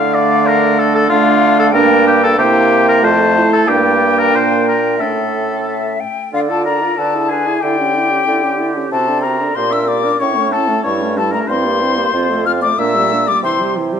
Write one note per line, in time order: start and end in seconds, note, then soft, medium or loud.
0.00 1.07 D3 loud
0.00 1.07 A3 medium
0.00 1.09 D4 loud
0.00 0.16 F5 loud
0.00 0.84 F5 loud
0.14 0.48 D5 loud
0.47 0.80 A#4 loud
0.79 0.95 A4 loud
0.95 1.09 A4 loud
1.09 1.75 D3 loud
1.09 1.70 A3 loud
1.09 1.70 D4 loud
1.09 1.57 F4 loud
1.09 1.73 F5 loud
1.60 1.67 A4 loud
1.72 2.38 G2 loud
1.72 2.37 A#3 loud
1.72 2.23 D4 loud
1.72 2.06 A#4 loud
1.72 2.38 G5 loud
2.07 2.23 G4 loud
2.24 2.38 A4 loud
2.38 3.05 C3 loud
2.38 3.04 A#3 loud
2.38 3.06 E4 medium
2.38 2.86 G4 loud
2.38 3.02 G5 loud
2.89 3.06 A#4 loud
3.02 3.51 F2 loud
3.02 3.69 A3 medium
3.02 3.38 F4 medium
3.02 3.52 C5 loud
3.02 3.68 A5 loud
3.37 3.68 E4 medium
3.53 3.70 A4 loud
3.67 4.32 G2 loud
3.67 4.81 A#3 medium
3.67 4.97 D4 medium
3.67 4.20 G4 loud
3.67 4.97 G5 loud
4.19 4.37 A#4 loud
4.33 5.01 A#2 medium
4.33 4.67 C5 loud
4.68 5.02 A#4 loud
4.98 6.00 A2 medium
4.98 5.98 A3 medium
4.98 5.98 C#4 medium
4.98 6.00 A4 medium
4.98 5.57 E5 medium
5.67 6.02 E5 medium
6.00 6.33 G5 medium
6.33 6.90 D3 medium
6.33 6.52 D4 medium
6.33 6.41 F4 medium
6.33 6.51 A4 medium
6.33 6.40 F5 loud
6.49 6.68 F4 medium
6.49 6.64 A4 medium
6.49 6.67 D5 medium
6.49 6.65 A5 medium
6.65 6.84 D4 medium
6.65 6.84 A4 medium
6.65 7.00 A#4 medium
6.65 6.99 A#5 medium
6.82 6.98 F4 medium
6.82 6.98 D5 medium
6.98 7.55 D3 medium
6.98 7.17 D4 medium
6.98 7.31 A4 medium
6.98 7.16 B4 medium
6.98 7.31 A5 medium
7.15 7.32 E4 medium
7.15 7.32 G#4 medium
7.29 7.49 D4 medium
7.29 7.62 G#4 medium
7.29 7.49 B4 medium
7.29 7.64 G#5 loud
7.47 7.62 E4 medium
7.47 7.63 G#4 medium
7.61 8.20 D3 medium
7.61 7.81 E4 medium
7.61 8.91 G4 medium
7.61 7.80 A4 medium
7.61 8.67 G5 loud
7.78 7.97 C#4 medium
7.78 7.96 G4 medium
7.95 8.12 E4 medium
7.95 8.13 A4 medium
8.11 8.27 C#4 medium
8.11 8.27 G4 medium
8.27 8.85 D3 medium
8.27 8.45 E4 medium
8.27 8.45 A4 medium
8.43 8.60 C#4 medium
8.43 8.62 G4 medium
8.59 8.77 E4 medium
8.59 8.78 A4 medium
8.75 8.91 C#4 medium
8.75 8.92 G4 medium
8.92 9.49 C3 medium
8.92 9.10 C4 medium
8.92 9.10 F#4 medium
8.92 9.24 A4 medium
8.92 9.21 A5 loud
9.08 9.26 D4 medium
9.08 9.26 A4 medium
9.22 9.42 C4 medium
9.22 9.43 F#4 medium
9.22 9.58 A#4 medium
9.22 9.56 A#5 medium
9.40 9.56 D4 medium
9.40 9.56 A4 medium
9.55 10.13 A#2 medium
9.55 9.73 A#3 medium
9.55 9.74 G4 medium
9.55 9.73 C5 medium
9.55 9.74 C6 loud
9.71 9.89 D4 medium
9.71 9.90 A#4 medium
9.71 9.87 E5 medium
9.71 9.90 E6 loud
9.87 10.06 A#3 medium
9.87 10.05 G4 medium
9.87 10.22 D5 medium
9.87 10.20 D6 loud
10.04 10.20 D4 medium
10.04 10.20 A#4 medium
10.20 10.78 A2 medium
10.20 10.38 C#4 medium
10.20 10.38 E4 medium
10.20 10.54 C#5 medium
10.20 10.51 C#6 loud
10.36 10.54 A3 medium
10.36 10.54 C#4 medium
10.52 10.70 C#4 medium
10.52 10.71 E4 medium
10.52 10.83 A4 loud
10.52 10.84 A5 loud
10.68 10.85 A3 medium
10.68 10.84 C#4 medium
10.83 11.41 G2 medium
10.83 11.03 G3 medium
10.83 11.03 E4 medium
10.83 11.19 C#5 medium
10.83 11.16 C#6 loud
11.01 11.19 A3 medium
11.01 11.19 C#4 medium
11.17 11.35 G3 medium
11.17 11.34 E4 medium
11.17 11.33 A4 medium
11.17 11.33 A5 loud
11.31 11.49 A3 medium
11.31 11.49 C#4 medium
11.31 11.49 A#4 medium
11.31 11.40 A#5 loud
11.47 12.06 G2 medium
11.47 11.67 C4 medium
11.47 11.67 E4 medium
11.47 12.47 C5 loud
11.47 12.44 C6 loud
11.65 11.84 A#3 medium
11.65 11.83 G4 medium
11.81 11.99 C4 medium
11.81 11.99 E4 medium
11.97 12.14 A#3 medium
11.97 12.13 G4 medium
12.13 12.71 F2 medium
12.13 12.32 C4 medium
12.13 12.32 F4 medium
12.30 12.48 A3 medium
12.30 12.48 A4 medium
12.45 12.64 C4 medium
12.45 12.64 F4 medium
12.45 12.61 F5 loud
12.45 12.52 F6 loud
12.62 12.78 A3 medium
12.62 12.78 A4 medium
12.62 12.69 D5 medium
12.62 12.80 D6 loud
12.79 13.26 A#2 loud
12.79 12.98 A#3 medium
12.79 12.97 D4 medium
12.79 13.28 E5 loud
12.79 13.30 E6 loud
12.96 13.14 G3 medium
12.96 13.13 A#3 medium
13.11 13.30 A#3 medium
13.11 13.30 D4 medium
13.27 13.43 G3 medium
13.27 13.44 A#3 medium
13.27 13.43 D5 medium
13.27 13.44 D6 loud
13.43 14.00 C3 medium
13.43 13.62 E3 medium
13.43 13.62 E4 medium
13.43 13.75 C5 medium
13.43 13.75 C6 loud
13.60 13.79 G3 medium
13.60 13.78 G4 medium
13.76 13.94 E3 medium
13.76 13.95 E4 medium
13.92 14.00 G3 medium
13.92 14.00 G4 medium